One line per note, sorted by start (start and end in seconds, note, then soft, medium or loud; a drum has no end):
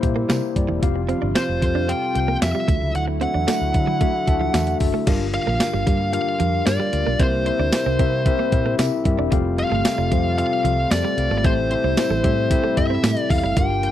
0.00 0.23 A#2 medium
0.00 0.85 C3 medium
0.00 2.65 C3 medium
0.00 2.64 G3 medium
0.00 0.02 A#3 loud
0.00 0.80 A#3 medium
0.00 0.21 A#3 medium
0.00 0.03 E4 loud
0.00 0.80 E4 medium
0.00 0.21 E4 medium
0.00 0.03 G4 loud
0.00 0.22 G4 medium
0.00 0.03 C5 loud
0.00 0.22 C5 medium
0.00 muted clean electric guitar stroke soft
0.00 kick medium
0.00 closed hi-hat medium
0.16 0.27 A#3 medium
0.29 0.40 C3 loud
0.29 0.40 G3 medium
0.29 0.48 A#3 medium
0.29 0.48 E4 medium
0.29 0.48 G4 medium
0.29 0.48 C5 medium
0.29 snare loud
0.29 closed hi-hat medium
0.29 tambourine medium
0.42 muted clean electric guitar stroke soft
0.55 0.66 G2 medium
0.55 0.74 A#3 medium
0.55 0.75 E4 medium
0.55 0.75 G4 medium
0.55 0.75 D5 medium
0.55 kick medium
0.55 closed hi-hat medium
0.69 0.79 E1 medium
0.69 0.80 E3 medium
0.82 1.13 F1 loud
0.82 2.67 F3 medium
0.82 1.01 C4 loud
0.82 1.01 F4 loud
0.82 2.67 F4 medium
0.82 1.01 G4 loud
0.82 1.02 F5 loud
0.82 kick loud
0.82 closed hi-hat medium
0.96 muted clean electric guitar stroke soft
1.08 1.27 C4 medium
1.08 1.20 C4 medium
1.08 1.28 F4 medium
1.08 1.28 G4 medium
1.08 1.28 F5 loud
1.08 closed hi-hat medium
1.22 1.33 G1 medium
1.22 1.33 D4 medium
1.35 1.54 C4 medium
1.35 1.47 C4 medium
1.35 1.54 F4 medium
1.35 1.54 G4 medium
1.35 1.91 C5 medium
1.35 1.55 F5 medium
1.35 snare loud
1.35 closed hi-hat medium
1.35 tambourine medium
1.49 1.59 F1 medium
1.62 1.92 F2 loud
1.62 1.81 C4 medium
1.62 1.81 F4 medium
1.62 1.81 G4 medium
1.62 1.81 A4 medium
1.62 muted clean electric guitar stroke soft
1.62 kick medium
1.62 closed hi-hat medium
1.75 1.87 D4 medium
1.88 2.07 C4 medium
1.88 2.00 C4 medium
1.88 2.07 F4 medium
1.88 2.07 G4 medium
1.88 2.07 F5 loud
1.88 2.38 G5 loud
1.88 closed hi-hat medium
2.15 2.36 C2 medium
2.15 2.34 C4 medium
2.15 2.34 F4 medium
2.15 2.34 G4 medium
2.15 2.34 F5 medium
2.15 muted clean electric guitar stroke soft
2.15 closed hi-hat medium
2.28 2.40 A#3 medium
2.41 2.52 F2 loud
2.41 2.60 C4 medium
2.41 2.60 F4 medium
2.41 2.60 G4 medium
2.41 2.92 E5 loud
2.41 2.61 F5 medium
2.41 muted clean electric guitar stroke soft
2.41 snare loud
2.41 closed hi-hat loud
2.41 tambourine medium
2.55 2.66 G3 medium
2.68 2.78 D2 loud
2.68 3.44 D3 medium
2.68 5.05 D3 medium
2.68 5.05 F#3 medium
2.68 2.79 A3 medium
2.68 5.05 A3 medium
2.68 3.11 D4 medium
2.68 5.05 E4 medium
2.68 3.11 F#4 medium
2.68 kick loud
2.68 closed hi-hat medium
2.82 2.92 C#2 medium
2.95 3.25 D2 loud
2.95 3.03 F#5 loud
2.95 closed hi-hat medium
3.08 muted clean electric guitar stroke soft
3.20 3.32 C4 medium
3.20 3.40 D4 medium
3.20 3.40 F#4 medium
3.20 3.40 A4 medium
3.20 3.40 E5 medium
3.20 4.77 F#5 loud
3.20 closed hi-hat medium
3.34 3.45 E2 medium
3.34 3.46 D4 medium
3.47 3.59 A3 medium
3.47 3.66 D4 medium
3.47 3.66 F#4 medium
3.47 3.67 A4 medium
3.47 3.67 E5 medium
3.47 snare loud
3.47 closed hi-hat medium
3.47 tambourine medium
3.61 3.71 D2 loud
3.74 4.05 D3 loud
3.74 3.93 D4 medium
3.74 3.93 F#4 medium
3.74 3.93 A4 medium
3.74 3.93 E5 medium
3.74 muted clean electric guitar stroke soft
3.74 kick medium
3.74 closed hi-hat medium
3.87 3.99 F#3 medium
4.00 4.12 A3 medium
4.00 4.19 D4 loud
4.00 4.19 F#4 loud
4.00 4.20 A4 medium
4.00 4.20 E5 loud
4.00 kick medium
4.00 closed hi-hat medium
4.27 4.48 D2 medium
4.27 4.46 D4 medium
4.27 4.46 F#4 medium
4.27 4.46 A4 medium
4.27 4.47 E5 loud
4.27 4.52 A5 medium
4.27 muted clean electric guitar stroke soft
4.27 kick medium
4.27 closed hi-hat medium
4.41 4.52 F3 medium
4.54 4.74 E2 medium
4.54 4.65 E3 medium
4.54 4.73 D4 medium
4.54 4.73 F#4 medium
4.54 4.73 A4 medium
4.54 4.73 E5 loud
4.54 4.79 F#5 medium
4.54 snare loud
4.54 closed hi-hat loud
4.54 tambourine medium
4.67 muted clean electric guitar stroke soft
4.67 closed hi-hat medium
4.80 4.91 F#1 medium
4.80 4.99 D4 medium
4.80 4.99 F#4 medium
4.80 5.00 A4 medium
4.80 5.00 E5 medium
4.80 kick loud
4.80 open hi-hat medium
4.94 5.05 A3 medium
5.07 5.37 G1 loud
5.07 5.83 G2 medium
5.07 7.18 D3 medium
5.07 5.19 G3 medium
5.07 13.91 G3 medium
5.07 9.28 A#3 medium
5.07 5.26 D4 loud
5.07 5.26 F4 loud
5.07 7.18 F4 medium
5.07 5.26 G4 loud
5.07 5.26 A#4 loud
5.07 5.26 F5 loud
5.07 kick loud
5.07 closed hi-hat medium
5.07 crash loud
5.33 5.52 D4 medium
5.33 5.53 F4 medium
5.33 5.53 G4 medium
5.33 5.53 A#4 medium
5.33 6.12 F5 loud
5.33 5.53 F5 medium
5.33 muted clean electric guitar stroke soft
5.33 closed hi-hat medium
5.47 5.57 A#1 medium
5.47 5.58 A#3 medium
5.60 5.79 D4 medium
5.60 5.79 F4 medium
5.60 5.79 G4 medium
5.60 5.79 A#4 medium
5.60 5.79 F5 medium
5.60 muted clean electric guitar stroke soft
5.60 snare loud
5.60 closed hi-hat medium
5.60 tambourine medium
5.74 5.84 G1 loud
5.74 5.85 G3 medium
5.86 6.17 G2 loud
5.86 5.98 G3 medium
5.86 6.05 D4 medium
5.86 6.05 F4 medium
5.86 6.05 G4 medium
5.86 6.06 A#4 medium
5.86 6.06 F5 medium
5.86 kick loud
5.86 closed hi-hat medium
6.13 6.32 D4 medium
6.13 6.32 F4 medium
6.13 6.32 G4 medium
6.13 6.32 A#4 medium
6.13 6.66 F5 loud
6.13 6.32 F5 loud
6.13 closed hi-hat medium
6.39 6.60 F2 medium
6.39 6.51 F3 medium
6.39 6.58 D4 medium
6.39 6.58 F4 medium
6.39 6.59 G4 medium
6.39 6.59 A#4 medium
6.39 6.59 F5 medium
6.39 closed hi-hat medium
6.66 6.77 G2 loud
6.66 6.85 D4 medium
6.66 6.85 F4 medium
6.66 6.85 G4 medium
6.66 6.85 A#4 medium
6.66 7.21 D5 loud
6.66 6.85 F5 medium
6.66 snare loud
6.66 closed hi-hat loud
6.66 tambourine medium
6.80 6.91 G3 medium
6.93 7.03 D2 medium
6.93 7.12 D4 medium
6.93 7.12 F4 medium
6.93 7.12 G4 medium
6.93 7.12 A#4 medium
6.93 7.12 F5 medium
6.93 muted clean electric guitar stroke soft
6.93 closed hi-hat medium
7.07 7.17 B1 medium
7.07 7.18 A#3 medium
7.19 7.50 C2 loud
7.19 7.95 C3 medium
7.19 13.53 C3 medium
7.19 7.38 C4 loud
7.19 7.31 C4 medium
7.19 7.38 E4 medium
7.19 9.30 E4 medium
7.19 7.38 G4 medium
7.19 7.38 A#4 medium
7.19 8.75 C5 medium
7.19 7.39 E5 loud
7.19 kick loud
7.19 closed hi-hat medium
7.45 7.64 C4 medium
7.45 7.64 E4 medium
7.45 7.65 G4 medium
7.45 7.65 A#4 medium
7.45 7.65 E5 medium
7.45 muted clean electric guitar stroke soft
7.45 closed hi-hat medium
7.59 7.69 D2 medium
7.59 7.71 D4 medium
7.72 7.91 C4 medium
7.72 7.91 E4 medium
7.72 7.91 G4 medium
7.72 7.91 A#4 medium
7.72 7.92 E5 medium
7.72 muted clean electric guitar stroke soft
7.72 snare loud
7.72 closed hi-hat medium
7.72 tambourine medium
7.86 7.96 C2 loud
7.86 7.97 C4 medium
7.99 8.29 C3 loud
7.99 8.18 C4 loud
7.99 8.11 C4 medium
7.99 8.18 E4 medium
7.99 8.18 G4 medium
7.99 8.18 A#4 medium
7.99 8.18 E5 loud
7.99 kick medium
7.99 closed hi-hat medium
8.25 8.44 C4 loud
8.25 8.44 E4 loud
8.25 8.45 G4 loud
8.25 8.45 A#4 loud
8.25 8.45 E5 loud
8.25 kick loud
8.25 closed hi-hat medium
8.39 8.50 A#3 medium
8.51 8.72 A#2 medium
8.51 8.71 C4 medium
8.51 8.71 E4 medium
8.51 8.71 G4 medium
8.51 8.71 A#4 medium
8.51 8.71 E5 loud
8.51 muted clean electric guitar stroke soft
8.51 kick medium
8.51 closed hi-hat medium
8.66 8.77 A#3 medium
8.78 8.89 C3 loud
8.78 8.97 C4 medium
8.78 8.90 C4 medium
8.78 8.97 E4 medium
8.78 8.97 G4 medium
8.78 8.98 A#4 medium
8.78 8.98 E5 loud
8.78 snare loud
8.78 closed hi-hat loud
8.78 tambourine medium
9.05 9.15 G2 medium
9.05 9.24 C4 medium
9.05 9.24 E4 medium
9.05 9.24 G4 medium
9.05 9.24 A#4 medium
9.05 9.24 E5 loud
9.05 muted clean electric guitar stroke soft
9.05 kick loud
9.05 closed hi-hat medium
9.19 9.29 E1 medium
9.19 9.30 D4 medium
9.31 9.62 F1 loud
9.31 9.43 F3 medium
9.31 13.53 A3 medium
9.31 9.50 C4 loud
9.31 9.51 F4 loud
9.31 11.43 F4 medium
9.31 9.51 G4 loud
9.31 9.51 A4 loud
9.31 9.51 F5 loud
9.31 kick loud
9.31 closed hi-hat loud
9.58 9.77 C4 medium
9.58 9.77 F4 medium
9.58 9.77 G4 medium
9.58 9.78 A4 medium
9.58 10.37 F5 loud
9.58 9.78 F5 medium
9.58 muted clean electric guitar stroke soft
9.58 closed hi-hat medium
9.72 9.82 G1 medium
9.72 9.83 A3 medium
9.85 10.04 C4 medium
9.85 10.04 F4 medium
9.85 10.04 G4 medium
9.85 10.04 A4 medium
9.85 10.04 E5 medium
9.85 muted clean electric guitar stroke soft
9.85 snare loud
9.85 closed hi-hat medium
9.85 tambourine loud
9.85 tambourine medium
9.98 10.08 F1 medium
9.98 10.10 G3 medium
10.11 10.42 F2 loud
10.11 10.23 G3 medium
10.11 10.30 C4 medium
10.11 10.30 F4 medium
10.11 10.30 G4 medium
10.11 10.31 A4 medium
10.11 10.31 C5 medium
10.11 kick loud
10.11 closed hi-hat medium
10.38 10.57 C4 loud
10.38 10.57 F4 medium
10.38 10.57 G4 medium
10.38 10.57 A4 medium
10.38 10.91 F5 medium
10.38 10.57 F5 loud
10.38 closed hi-hat medium
10.64 10.84 C2 loud
10.64 10.76 F3 medium
10.64 10.83 C4 medium
10.64 10.83 F4 medium
10.64 10.83 G4 medium
10.64 10.84 A4 medium
10.64 10.84 F5 medium
10.64 closed hi-hat medium
10.91 11.01 F2 loud
10.91 11.10 C4 medium
10.91 11.10 F4 medium
10.91 11.10 G4 medium
10.91 11.10 A4 medium
10.91 11.36 D5 medium
10.91 11.10 F5 medium
10.91 snare loud
10.91 closed hi-hat loud
10.91 tambourine medium
11.04 11.16 G3 medium
11.17 11.28 C2 medium
11.17 11.36 C4 medium
11.17 11.37 F4 medium
11.17 11.37 G4 medium
11.17 11.37 A4 medium
11.17 11.37 F5 medium
11.17 muted clean electric guitar stroke soft
11.17 closed hi-hat medium
11.31 11.41 G#1 medium
11.31 11.42 A3 medium
11.38 11.45 D5 medium
11.44 11.74 A1 loud
11.44 12.20 A2 medium
11.44 11.56 A3 medium
11.44 11.63 C4 loud
11.44 11.63 E4 medium
11.44 13.55 E4 medium
11.44 11.63 G4 medium
11.44 11.63 A4 medium
11.44 12.81 C5 medium
11.44 11.63 E5 loud
11.44 kick loud
11.44 closed hi-hat medium
11.71 11.89 C4 medium
11.71 11.90 E4 medium
11.71 11.90 G4 medium
11.71 11.90 A4 medium
11.71 11.90 E5 medium
11.71 muted clean electric guitar stroke soft
11.71 closed hi-hat medium
11.84 11.94 C2 medium
11.84 11.96 C4 medium
11.97 12.16 C4 medium
11.97 12.16 E4 medium
11.97 12.16 G4 medium
11.97 12.16 A4 medium
11.97 12.17 E5 medium
11.97 muted clean electric guitar stroke soft
11.97 snare loud
11.97 closed hi-hat medium
11.97 tambourine medium
12.10 12.21 A1 loud
12.10 12.22 A3 medium
12.23 12.54 A2 loud
12.23 12.35 G3 medium
12.23 12.42 C4 loud
12.23 12.43 E4 medium
12.23 12.43 G4 medium
12.23 12.43 A4 medium
12.23 12.43 E5 loud
12.23 kick medium
12.23 closed hi-hat medium
12.50 12.69 C4 loud
12.50 12.69 E4 loud
12.50 12.69 G4 loud
12.50 12.69 A4 loud
12.50 12.70 E5 loud
12.50 kick medium
12.50 closed hi-hat medium
12.64 12.75 A3 medium
12.76 12.97 G2 loud
12.76 12.95 C4 medium
12.76 12.96 E4 medium
12.76 12.96 G4 medium
12.76 12.96 A4 medium
12.76 13.30 E5 loud
12.76 12.96 E5 medium
12.76 muted clean electric guitar stroke soft
12.76 kick medium
12.76 closed hi-hat medium
12.90 13.02 C4 medium
13.03 13.13 A2 loud
13.03 13.15 A3 medium
13.03 13.22 C4 medium
13.03 13.22 E4 medium
13.03 13.22 G4 medium
13.03 13.23 A4 medium
13.03 13.23 E5 medium
13.03 snare loud
13.03 closed hi-hat loud
13.03 tambourine medium
13.17 closed hi-hat medium
13.30 13.40 E2 medium
13.30 13.49 C4 medium
13.30 13.49 E4 medium
13.30 13.49 G4 medium
13.30 13.49 A4 medium
13.30 13.49 E5 medium
13.30 13.55 F5 medium
13.30 muted clean electric guitar stroke soft
13.30 kick loud
13.30 open hi-hat medium
13.44 13.54 F#1 medium
13.44 13.55 G3 medium
13.57 13.87 G1 medium
13.57 13.91 G2 medium
13.57 13.91 D3 medium
13.57 13.68 G3 medium
13.57 13.91 A#3 medium
13.57 13.75 D4 loud
13.57 13.76 F4 medium
13.57 13.91 F4 medium
13.57 13.76 G4 medium
13.57 13.76 A#4 medium
13.57 13.76 F5 loud
13.57 13.91 G5 medium
13.57 kick loud
13.57 closed hi-hat medium
13.83 13.91 D4 medium
13.83 13.91 F4 medium
13.83 13.91 G4 medium
13.83 13.91 A#4 medium
13.83 13.91 F5 medium
13.83 muted clean electric guitar stroke soft
13.83 closed hi-hat medium